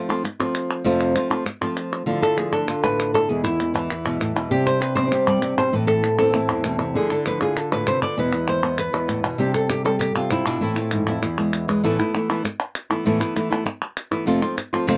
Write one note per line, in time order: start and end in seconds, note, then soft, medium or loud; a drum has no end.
0.09 0.23 F3 medium
0.09 0.24 A3 soft
0.09 0.24 C4 medium
0.09 0.24 F4 medium
0.24 muted nylon-string guitar stroke medium
0.24 clap medium
0.40 0.85 F3 soft
0.40 0.85 A3 soft
0.40 0.84 C4 medium
0.40 0.85 F4 medium
0.55 clap medium
0.84 1.15 F2 medium
0.84 1.15 C3 medium
0.84 1.14 F3 medium
0.84 1.15 A3 medium
0.84 1.15 C4 medium
0.84 1.16 F4 medium
1.01 clap medium
1.15 1.30 F3 soft
1.15 1.30 A3 soft
1.15 1.29 C4 medium
1.15 1.29 F4 medium
1.15 clap medium
1.30 1.45 F3 soft
1.30 1.45 A3 medium
1.30 1.45 C4 medium
1.30 1.45 F4 medium
1.46 muted nylon-string guitar stroke medium
1.46 clap medium
1.61 2.06 F3 soft
1.61 2.07 A3 soft
1.61 2.06 C4 medium
1.61 2.05 F4 medium
1.77 clap medium
2.06 2.21 D3 medium
2.06 3.29 D3 medium
2.06 2.22 F3 medium
2.06 2.22 A3 medium
2.06 2.21 D4 medium
2.06 2.20 E4 medium
2.06 2.52 F4 medium
2.21 2.36 A3 soft
2.21 2.37 D4 soft
2.21 2.37 E4 medium
2.21 2.37 A4 medium
2.21 clap medium
2.37 2.67 F3 soft
2.37 2.67 A3 soft
2.37 2.67 D4 soft
2.37 2.67 E4 medium
2.37 2.52 G#4 medium
2.37 clap medium
2.52 3.27 D4 medium
2.52 2.83 A4 loud
2.68 3.27 F4 medium
2.68 muted nylon-string guitar stroke medium
2.68 clap medium
2.83 3.27 A2 medium
2.83 3.14 A3 soft
2.83 3.13 D4 soft
2.83 3.14 B4 loud
3.00 clap loud
3.13 3.29 A3 soft
3.13 3.29 D4 soft
3.13 3.28 E4 soft
3.13 3.29 A4 loud
3.29 3.44 E2 medium
3.29 4.50 E2 medium
3.29 3.44 B2 medium
3.29 3.44 E3 medium
3.29 3.44 G#3 medium
3.29 3.44 B3 medium
3.29 3.43 E4 medium
3.29 3.43 G#4 loud
3.44 3.58 E3 soft
3.44 3.59 G#3 soft
3.44 3.59 B3 medium
3.44 3.73 E4 loud
3.44 3.59 E4 soft
3.44 clap medium
3.59 3.89 E3 soft
3.59 3.90 G#3 soft
3.59 3.90 B3 soft
3.59 3.90 E4 soft
3.59 clap medium
3.74 4.49 E3 medium
3.74 4.51 E4 medium
3.90 muted nylon-string guitar stroke medium
3.90 clap medium
4.05 4.20 B2 medium
4.05 4.36 E3 soft
4.05 4.35 G#3 soft
4.05 4.34 B3 soft
4.05 4.51 B3 soft
4.05 4.34 E4 soft
4.20 4.35 A2 medium
4.20 clap medium
4.35 4.51 B2 medium
4.35 4.50 E3 soft
4.35 4.50 G#3 soft
4.35 4.50 B3 soft
4.35 4.50 E4 soft
4.50 4.80 C3 medium
4.50 5.41 C3 medium
4.50 4.81 G3 medium
4.50 4.81 C4 medium
4.50 4.80 D4 medium
4.50 4.81 G4 loud
4.50 4.79 G4 medium
4.66 4.94 C5 loud
4.66 clap medium
4.80 4.95 C4 soft
4.80 4.95 D4 soft
4.80 4.96 G4 soft
4.80 5.12 B4 loud
4.80 clap medium
4.95 5.01 G3 soft
4.95 5.71 C4 medium
4.95 5.01 D4 soft
4.95 5.02 G4 medium
4.95 5.27 C5 loud
4.95 muted nylon-string guitar stroke medium
5.02 5.05 G3 medium
5.02 5.05 C4 medium
5.02 5.06 D4 medium
5.02 5.06 G4 medium
5.06 5.10 G3 medium
5.06 5.10 C4 medium
5.06 5.10 D4 medium
5.06 5.11 G4 medium
5.11 5.41 C3 medium
5.11 5.40 G3 medium
5.11 5.41 C4 medium
5.11 5.41 D4 medium
5.11 5.41 G4 medium
5.11 5.73 G4 medium
5.11 clap medium
5.28 5.42 G3 medium
5.28 5.58 D5 loud
5.41 5.57 C3 medium
5.41 5.56 G3 soft
5.41 5.57 C4 medium
5.41 5.56 D4 medium
5.41 5.56 G4 medium
5.41 clap loud
5.57 5.72 B2 medium
5.57 5.72 C4 soft
5.57 5.72 D4 soft
5.57 5.72 G4 soft
5.57 5.73 C5 loud
5.72 6.02 A2 medium
5.72 6.49 A2 medium
5.72 6.03 E3 medium
5.72 6.03 A3 medium
5.72 6.02 C4 medium
5.72 6.01 E4 medium
5.72 5.87 B4 loud
5.87 6.18 A4 loud
5.87 clap medium
6.03 6.17 A3 soft
6.03 6.18 C4 soft
6.03 6.18 E4 soft
6.03 clap medium
6.18 6.23 E3 soft
6.18 6.93 C4 medium
6.18 6.24 C4 soft
6.18 6.24 E4 soft
6.18 6.95 A4 loud
6.18 muted nylon-string guitar stroke medium
6.24 6.27 E3 medium
6.24 6.28 A3 medium
6.24 6.28 C4 medium
6.24 6.29 E4 medium
6.29 6.32 E3 medium
6.29 6.33 A3 medium
6.29 6.33 C4 medium
6.29 6.33 E4 medium
6.33 6.63 A2 medium
6.33 6.62 E3 medium
6.33 6.63 A3 medium
6.33 6.63 C4 medium
6.33 6.98 E4 medium
6.33 6.64 E4 medium
6.33 clap medium
6.49 6.95 E2 medium
6.63 6.79 B2 medium
6.63 6.79 E3 soft
6.63 6.79 A3 medium
6.63 6.78 C4 medium
6.63 6.78 E4 medium
6.63 clap medium
6.79 6.95 C3 medium
6.79 6.93 A3 soft
6.79 6.94 C4 soft
6.79 6.94 E4 soft
6.94 7.09 D3 medium
6.94 8.01 D3 medium
6.94 7.09 F3 medium
6.94 7.09 A3 medium
6.94 7.09 D4 medium
6.94 7.08 E4 medium
6.94 7.11 G#4 medium
7.09 7.24 A3 soft
7.09 7.25 D4 soft
7.09 7.24 E4 medium
7.09 7.26 A4 medium
7.09 clap medium
7.25 7.40 F3 soft
7.25 7.40 A3 soft
7.25 7.40 D4 medium
7.25 7.39 E4 medium
7.25 7.42 B4 loud
7.25 clap medium
7.40 7.55 A3 soft
7.40 7.55 D4 soft
7.40 7.55 E4 soft
7.40 8.15 F4 medium
7.40 7.57 G#4 medium
7.56 7.72 A4 loud
7.56 muted nylon-string guitar stroke medium
7.56 clap medium
7.71 7.86 A2 medium
7.71 8.17 A3 soft
7.71 8.16 D4 soft
7.71 8.18 B4 loud
7.87 8.02 C3 medium
7.87 8.02 C5 loud
7.87 clap loud
8.02 8.17 D3 medium
8.02 8.17 D5 loud
8.17 8.32 E2 medium
8.17 8.92 E2 medium
8.17 8.32 B2 medium
8.17 8.32 E3 medium
8.17 8.32 G#3 medium
8.17 8.31 B3 medium
8.17 8.62 B3 soft
8.17 8.31 E4 medium
8.17 9.38 E4 soft
8.17 8.78 B4 loud
8.32 8.46 E3 soft
8.32 8.46 G#3 soft
8.32 8.47 B3 soft
8.32 8.47 E4 medium
8.32 clap medium
8.47 8.62 E3 soft
8.47 8.62 G#3 medium
8.47 8.62 B3 medium
8.47 8.61 E4 medium
8.47 8.79 C5 loud
8.47 clap medium
8.62 8.77 E3 soft
8.62 8.77 G#3 soft
8.62 8.77 B3 soft
8.62 9.38 B3 medium
8.62 8.77 E4 soft
8.78 9.39 B4 loud
8.78 muted nylon-string guitar stroke medium
8.78 clap medium
8.93 9.38 E2 medium
8.93 9.39 E3 soft
8.93 9.39 G#3 soft
8.93 9.39 B3 soft
8.93 9.38 E4 soft
9.08 9.23 A2 medium
9.08 clap loud
9.24 9.39 B2 medium
9.38 10.14 C3 medium
9.38 9.54 C3 medium
9.38 9.83 G3 medium
9.38 9.54 G3 medium
9.38 9.54 C4 medium
9.38 9.54 D4 medium
9.38 9.54 G4 loud
9.38 9.52 G4 medium
9.54 9.69 C4 soft
9.54 9.69 D4 soft
9.54 9.69 G4 soft
9.54 9.70 A4 loud
9.54 clap medium
9.69 9.84 G3 soft
9.69 9.84 C4 medium
9.69 9.84 D4 soft
9.69 9.85 G4 loud
9.69 9.83 G4 medium
9.69 clap loud
9.84 10.47 G3 medium
9.84 9.99 C4 soft
9.84 10.00 D4 soft
9.84 9.99 G4 soft
9.84 9.99 A4 medium
9.99 10.15 G4 loud
9.99 muted nylon-string guitar stroke medium
9.99 clap medium
10.15 10.29 C3 medium
10.15 10.61 C4 soft
10.15 10.61 D4 soft
10.15 10.61 F4 medium
10.15 10.61 G4 soft
10.30 10.46 C3 medium
10.30 10.61 E4 loud
10.30 clap medium
10.46 10.61 B2 medium
10.46 10.62 D4 medium
10.61 10.76 A2 medium
10.61 11.22 A2 medium
10.61 10.76 E3 medium
10.61 10.76 A3 medium
10.61 10.76 C4 medium
10.61 11.07 E4 medium
10.61 10.75 E4 medium
10.76 10.91 A3 soft
10.76 10.92 C4 soft
10.76 10.91 E4 soft
10.76 11.07 F4 loud
10.76 clap medium
10.91 11.07 G#2 medium
10.91 11.07 E3 soft
10.91 11.07 A3 soft
10.91 11.07 C4 soft
10.91 11.06 E4 medium
10.91 clap medium
11.07 11.22 F2 medium
11.07 11.23 A3 soft
11.07 11.22 C4 soft
11.07 11.22 E4 soft
11.07 11.69 E4 medium
11.22 11.82 E2 medium
11.22 muted nylon-string guitar stroke medium
11.22 clap medium
11.38 11.84 E3 soft
11.38 11.67 G#3 soft
11.38 11.84 G#3 soft
11.38 11.83 B3 soft
11.38 11.83 E4 soft
11.53 clap loud
11.68 11.82 G#3 medium
11.68 11.82 B4 soft
11.84 11.98 E2 medium
11.84 11.98 A2 medium
11.84 11.99 E3 medium
11.84 11.99 A3 medium
11.84 11.98 B3 medium
11.84 11.98 E4 medium
11.99 12.13 E3 soft
11.99 12.14 A3 medium
11.99 12.14 B3 medium
11.99 12.14 E4 medium
11.99 clap medium
12.14 12.29 E3 soft
12.14 12.29 A3 medium
12.14 12.29 B3 medium
12.14 12.28 E4 medium
12.14 clap medium
12.30 12.43 E3 medium
12.30 12.44 A3 medium
12.30 12.44 B3 medium
12.30 12.44 E4 medium
12.45 muted nylon-string guitar stroke medium
12.45 clap medium
12.75 clap medium
12.90 13.05 E3 soft
12.90 13.05 A3 soft
12.90 13.05 B3 soft
12.90 13.05 E4 medium
13.05 13.20 E2 medium
13.05 13.20 A2 medium
13.05 13.20 E3 medium
13.05 13.20 A3 medium
13.05 13.20 B3 medium
13.05 13.19 E4 medium
13.20 13.34 E3 soft
13.20 13.35 A3 soft
13.20 13.35 B3 medium
13.20 13.35 E4 medium
13.20 clap medium
13.36 13.51 E3 medium
13.36 13.50 A3 medium
13.36 13.50 B3 medium
13.36 13.49 E4 medium
13.36 clap medium
13.50 13.65 E3 soft
13.50 13.64 A3 medium
13.50 13.65 B3 medium
13.50 13.65 E4 medium
13.66 muted nylon-string guitar stroke medium
13.66 clap medium
13.97 clap medium
14.11 14.26 E3 soft
14.11 14.26 A3 soft
14.11 14.27 B3 soft
14.11 14.27 E4 medium
14.26 14.41 F2 medium
14.26 14.42 C3 medium
14.26 14.42 F3 medium
14.26 14.42 A3 medium
14.26 14.41 C4 medium
14.26 14.41 F4 medium
14.42 14.56 F3 soft
14.42 14.57 A3 soft
14.42 14.56 C4 medium
14.42 14.57 F4 medium
14.42 clap medium
14.57 muted nylon-string guitar stroke medium
14.57 clap medium
14.73 14.87 F3 soft
14.73 14.87 A3 medium
14.73 14.87 C4 medium
14.73 14.87 F4 medium
14.87 14.97 F2 medium
14.87 14.97 C3 medium
14.87 14.97 F3 medium
14.87 14.97 A3 medium
14.87 14.97 C4 medium
14.87 14.97 F4 medium
14.87 clap loud